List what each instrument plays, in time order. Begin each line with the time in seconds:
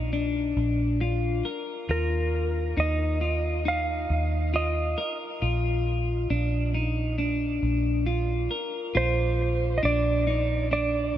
Already playing: fingered electric bass A#1, clean electric guitar D#4
0.13 clean electric guitar D4
0.57 fingered electric bass A#1
1.01 clean electric guitar F4
1.45 clean electric guitar A#4
1.89 fingered electric bass D#2, clean electric guitar F4, electric slide guitar A#4
2.77 fingered electric bass D#2, clean electric guitar D#4, electric slide guitar D#5
3.21 clean electric guitar F4
3.65 clean electric guitar D#4, electric slide guitar F5
4.10 fingered electric bass D#2
4.54 clean electric guitar F4, electric slide guitar D#5
4.98 clean electric guitar A#4
5.42 fingered electric bass A#1, clean electric guitar F4
6.30 fingered electric bass A#1, clean electric guitar D4
6.74 clean electric guitar D#4
7.18 clean electric guitar D4
7.63 fingered electric bass A#1
8.06 clean electric guitar F4
8.51 clean electric guitar A#4
8.95 fingered electric bass A#1, clean electric guitar F4, electric slide guitar C5
9.78 electric slide guitar D#5
9.83 fingered electric bass A#1, clean electric guitar D4, electric slide guitar D5
10.27 clean electric guitar D#4
10.71 clean electric guitar D4, electric slide guitar D5